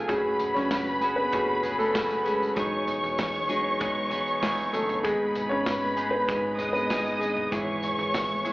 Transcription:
Already playing: F3 A3 B3 D#4 A4
0.08 F#1 F#3 A3 C#4 F#4 G#4 B4 B5, kick, hi-hat pedal, open hi-hat, tambourine
0.39 floor tom, hi-hat pedal, open hi-hat, tambourine
0.54 F#1 C#4 C#5, snare
0.71 F#1, kick, snare, hi-hat pedal, open hi-hat, tambourine
1.01 C#4 F#4 G#4, hi-hat pedal, open hi-hat, tambourine
1.16 B3 B4
1.32 F#1 A3 C#4 F#4 G#4, kick, hi-hat pedal, open hi-hat, tambourine
1.63 C#4 F#4 G#4, floor tom, hi-hat pedal, open hi-hat, tambourine
1.78 A3 A4, tambourine
1.94 F#3 A3 C#4 F#4 G#4, kick, snare, hi-hat pedal, open hi-hat, tambourine
2.10 tambourine
2.25 G#3 C#4 F#4 G#4, hi-hat pedal, open hi-hat, tambourine
2.43 tambourine
2.56 E1 E3 F#3 G#3 B3 D#4 G#4 C#5 C#6, kick, hi-hat pedal, open hi-hat, tambourine
2.88 floor tom, hi-hat pedal, open hi-hat, tambourine
3.03 E1, tambourine
3.18 E1, kick, snare, hi-hat pedal, open hi-hat, tambourine
3.49 F#3 G#3 B3 D#4 G#4, hi-hat pedal, open hi-hat, tambourine
3.80 E1 G#3 B3 D#4 G#4, kick, hi-hat pedal, open hi-hat, tambourine
4.11 B3 D#4 G#4, floor tom, hi-hat pedal, open hi-hat, tambourine
4.28 tambourine
4.42 G#1 E3 G#3 B3 D#4 G#4, kick, snare, hi-hat pedal, open hi-hat, tambourine
4.58 tambourine
4.73 F#1 A3 B3 D#4 G#4 A4, hi-hat pedal, open hi-hat, tambourine
4.89 floor tom, tambourine
5.04 G#1 G#2 D#3 G#3 B3 D#4 G#4 B4 B5, kick, hi-hat pedal, open hi-hat, tambourine
5.35 floor tom, hi-hat pedal, open hi-hat, tambourine
5.49 G#1 C#4 C#5
5.66 G#1, kick, snare, hi-hat pedal, open hi-hat, tambourine
5.97 G#3 B3 D#4 G#4, hi-hat pedal, open hi-hat, tambourine
6.11 B3 B4
6.27 G#1 G#3 B3 D#4 G#4, kick, hi-hat pedal, open hi-hat, tambourine
6.59 G#3 B3 D#4 G#4 D#5 D#6, floor tom, hi-hat pedal, open hi-hat, tambourine
6.73 B3 B4, tambourine
6.90 G#2 D#3 G#3 B3 D#4 G#4, kick, snare, hi-hat pedal, open hi-hat, tambourine
7.06 tambourine
7.19 G#3 B3 D#4 G#4, hi-hat pedal, open hi-hat, tambourine
7.37 floor tom
7.51 G#1 G#2 E3 G#3 B3 E4 G#4 C#5 C#6, kick, hi-hat pedal, open hi-hat, tambourine
7.83 floor tom, hi-hat pedal, open hi-hat, tambourine
7.99 G#1, tambourine
8.14 G#1, kick, snare, hi-hat pedal, open hi-hat, tambourine
8.45 G#3 B3 E4 G#4, hi-hat pedal, open hi-hat, tambourine

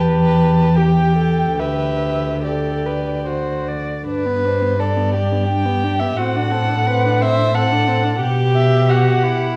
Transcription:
Already playing: E2 G4 B4
0.00 A5
0.75 G4 G5
1.17 A4
1.57 D2 G4 B4 E5
2.44 G4 A4 D5
2.86 B4
3.26 F#4 C5
3.68 D5
4.07 G2 D4 B4
4.26 B3
4.44 D4 C5
4.61 B3
4.78 D4 A4 D5
4.96 B3
5.14 D4 G4
5.32 B3
5.48 D4 G5
5.66 B3
5.84 D4
6.00 B3 E5
6.17 A2 C4 F#4 F#5
6.36 D4
6.51 C4 A4
6.69 D4
6.87 C4 B4
7.05 D4
7.20 C4 C5 E5
7.38 D4
7.54 C4 A4 F#5
7.72 D4
7.87 C4
8.03 D4
8.20 B2 G4
8.55 E5
8.89 F#4 F#5
9.24 E4

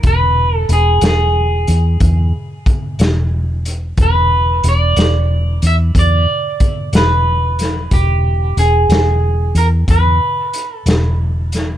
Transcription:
0.03 E1 B4, kick, closed hi-hat
0.57 A4
0.69 E1 G#4, closed hi-hat
1.01 E1, snare, closed hi-hat
1.07 G#4
1.67 E2, closed hi-hat
2.00 E2, kick, closed hi-hat
2.66 kick, closed hi-hat
2.99 E1, snare, closed hi-hat
3.65 closed hi-hat
3.97 E1, kick, closed hi-hat
4.02 B4
4.63 E1, closed hi-hat
4.69 D5
4.96 E1, snare, closed hi-hat
5.62 E2, closed hi-hat
5.67 E5
5.95 E2, kick, closed hi-hat
5.99 D5
6.60 kick, closed hi-hat
6.93 E1 B4, snare, closed hi-hat
7.59 snare, closed hi-hat
7.91 E1 G4, kick, closed hi-hat
8.57 E1 G#4, closed hi-hat
8.89 E1, snare, closed hi-hat
9.55 E2 A#4, closed hi-hat
9.88 E2 B4, kick, closed hi-hat
10.53 closed hi-hat
10.76 A4
10.86 E1, snare, closed hi-hat
11.52 snare, closed hi-hat

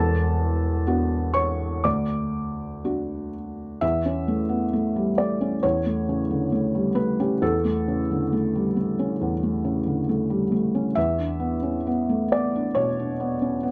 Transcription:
Already playing: E1 E2 A4 A5
0.87 B3 D4 F#4
1.34 C#5 C#6
1.84 D2 D5 D6
2.84 D4 F#4
3.81 E2 E5
4.05 C#4
4.28 A3
4.49 B3
4.73 A3
4.96 G3
5.18 A3 D5
5.41 C#4
5.63 E2 C#5
5.86 A3
6.09 C#3
6.30 D3
6.52 A3
6.75 G3
6.95 A3 B4
7.20 C#4 G4
7.42 E2 A4
7.65 A3
7.88 C#3
8.11 D3
8.32 A3
8.55 G3
8.77 A3
8.99 C#4
9.21 E2
9.43 A3
9.65 C#3
9.87 D3
10.09 A3
10.30 G3
10.52 A3
10.75 C#4
10.95 E2 E5
11.19 D4
11.40 B3
11.63 C#4
11.87 B3
12.09 A3
12.32 B3 D5
12.55 D4
12.75 B2 C#5
12.99 D4
13.20 B3
13.42 C#4
13.63 B3

